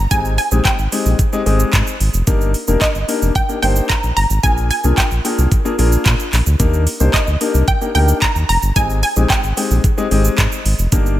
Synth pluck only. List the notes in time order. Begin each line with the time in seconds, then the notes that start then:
Already playing: A#5
0.11 G#5
0.38 G#5
0.65 G5
2.82 D#5
3.36 G5
3.62 G5
3.89 A#5
4.17 A#5
4.43 G#5
4.71 G#5
4.98 G5
7.14 D#5
7.68 G5
7.95 G5
8.22 A#5
8.49 A#5
8.76 G#5
9.03 G#5
9.30 G5